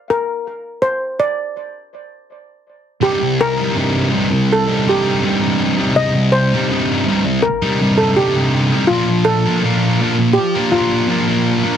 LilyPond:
<<
  \new Staff \with { instrumentName = "Steel pan" } { \time 4/4 \key c \dorian \tempo 4 = 82 bes'4 c''8 d''4. r4 | g'8 bes'4. a'8 g'4 r8 | ees''8 c''4. bes'8. a'16 g'8. r16 | f'8 a'4. g'8 f'4 r8 | }
  \new Staff \with { instrumentName = "Distorted electric guitar" } { \clef bass \time 4/4 \key c \dorian r1 | <c, g, c g ees'>8. <c g ees'>16 <c, g, c g ees'>8 <g, c g ees'>8. <c g ees'>16 <g, c g ees'>8 <c, g, c g ees'>16 <c g ees'>8 <c g ees'>16 | <c, g, c g ees'>8. <c g ees'>16 <c, g, c g ees'>8 <g, c g ees'>8. <c g ees'>16 <g, c g ees'>8 <c, g, c g ees'>16 <c g ees'>8 <c g ees'>16 | <bes, f bes d' f' bes'>8. <bes d' f' bes'>16 <bes, f bes d' f' bes'>8 <bes d' f' bes'>8. <bes d' f' bes'>16 <bes d' f' bes'>8 <bes, f bes d' f' bes'>16 <bes d' f' bes'>8 <bes d' f' bes'>16 | }
>>